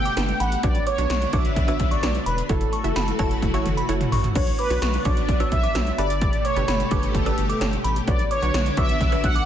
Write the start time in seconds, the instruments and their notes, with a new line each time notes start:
Already playing: string machine B2 A3 G4, synth pluck D4 G4 A4 B4, analog polysynth G5
0.05 synth bell D6, closed hi-hat
0.17 analog synth bass G1, synth pluck D4 G4 A4 B4, snare, closed hi-hat
0.29 closed hi-hat
0.40 analog synth bass A1, analog polysynth F#5, synth bell B5, closed hi-hat
0.52 closed hi-hat
0.63 analog synth bass B1, string machine D3 B3 D4, synth pluck D4 F#4 B4 C#5, analog polysynth D5, kick, closed hi-hat
0.75 closed hi-hat
0.87 analog polysynth C#5, synth bell D6, closed hi-hat
0.98 analog synth bass B1, synth pluck D4 F#4 B4 C#5, closed hi-hat
1.10 analog synth bass B1, synth bell C#6, snare, closed hi-hat
1.22 closed hi-hat
1.33 analog synth bass B1, synth pluck D4 F#4 B4 C#5, analog polysynth E5, synth bell D6, kick, closed hi-hat
1.45 closed hi-hat
1.56 analog synth bass B1, kick, closed hi-hat
1.68 synth pluck D4 F#4 B4 C#5, synth bell E6, closed hi-hat
1.80 analog synth bass B1, kick, closed hi-hat
1.91 analog polysynth D5, synth bell C#6, closed hi-hat
2.03 analog synth bass B1, synth pluck D4 F#4 B4 C#5, snare, closed hi-hat
2.15 closed hi-hat
2.26 analog synth bass E1, analog polysynth B4, synth bell B5, closed hi-hat
2.38 closed hi-hat
2.49 analog synth bass F#1, string machine E3 A3 F#4, synth pluck E4 F#4 A4 C#5, analog polysynth A4, kick, closed hi-hat
2.61 closed hi-hat
2.73 synth bell C#6, closed hi-hat
2.84 analog synth bass F#1, synth pluck E4 F#4 A4 E5, closed hi-hat
2.96 analog synth bass F#1, synth bell B5, snare, closed hi-hat
3.08 closed hi-hat
3.19 analog synth bass F#1, synth pluck E4 F#4 A4 C#5, synth bell A5, kick, closed hi-hat
3.31 closed hi-hat
3.42 analog synth bass F#1, kick, closed hi-hat, high tom
3.54 synth pluck E4 F#4 A4 C#5, synth bell C#6, closed hi-hat
3.66 analog synth bass F#1, closed hi-hat, mid tom
3.77 synth bell B5, closed hi-hat
3.89 analog synth bass F#1, synth pluck E4 F#4 A4 C#5, closed hi-hat
4.01 closed hi-hat, mid tom
4.12 analog synth bass A1, synth bell C#6, floor tom, open hi-hat
4.24 closed hi-hat, floor tom
4.35 analog synth bass B1, string machine D3 B3 D4, synth pluck D4 F#4 B4 C#5, analog polysynth C#5, kick, closed hi-hat, crash
4.47 closed hi-hat
4.59 analog polysynth B4, synth bell D6, closed hi-hat
4.70 analog synth bass B1, synth pluck D4 F#4 B4 C#5, closed hi-hat
4.82 analog synth bass B1, synth bell C#6, snare, closed hi-hat
4.94 closed hi-hat
5.05 analog synth bass B1, synth pluck D4 F#4 B4 C#5, analog polysynth D5, synth bell D6, kick, closed hi-hat
5.17 closed hi-hat
5.29 analog synth bass B1, kick, closed hi-hat
5.40 synth pluck D4 F#4 B4 C#5, synth bell E6, closed hi-hat
5.52 analog synth bass B1, analog polysynth E5, kick, closed hi-hat
5.63 synth bell D6, closed hi-hat
5.75 analog synth bass B1, synth pluck D4 F#4 B4 C#5, snare, closed hi-hat
5.87 closed hi-hat
5.98 analog synth bass G1, string machine B2 A3 G4, synth pluck D4 G4 A4 B4, analog polysynth D5, synth bell B5, closed hi-hat
6.10 closed hi-hat
6.21 kick, closed hi-hat
6.33 closed hi-hat
6.45 analog polysynth C#5, synth bell D6, closed hi-hat
6.56 analog synth bass G1, synth pluck D4 G4 A4 B4, closed hi-hat
6.68 analog synth bass G1, synth bell B5, snare, closed hi-hat
6.80 closed hi-hat
6.91 analog synth bass G1, synth pluck D4 G4 A4 B4, analog polysynth C#5, synth bell D6, kick, closed hi-hat
7.03 closed hi-hat
7.15 analog synth bass G1, analog polysynth A4, kick, closed hi-hat
7.26 synth pluck D4 G4 A4 B4, synth bell E6, closed hi-hat
7.38 analog synth bass G1, closed hi-hat
7.49 synth bell D6, closed hi-hat
7.61 analog synth bass G1, synth pluck D4 G4 A4 C#5, snare, closed hi-hat
7.73 closed hi-hat
7.84 analog synth bass A1, synth bell B5, closed hi-hat
7.96 closed hi-hat
8.08 analog synth bass B1, string machine D3 B3 D4, synth pluck D4 F#4 B4 C#5, analog polysynth D5, kick, closed hi-hat
8.19 closed hi-hat
8.31 analog polysynth C#5, synth bell D6, closed hi-hat
8.42 analog synth bass B1, synth pluck D4 F#4 B4 C#5, closed hi-hat
8.54 analog synth bass B1, synth bell C#6, snare, closed hi-hat
8.66 closed hi-hat
8.77 analog synth bass B1, synth pluck D4 F#4 B4 C#5, analog polysynth E5, synth bell D6, kick, closed hi-hat
8.89 closed hi-hat
9.01 analog synth bass B1, kick, closed hi-hat
9.12 synth pluck D4 F#4 B4 C#5, synth bell E6, closed hi-hat
9.24 analog synth bass B1, analog polysynth F#5, kick, closed hi-hat
9.35 synth bell D6, closed hi-hat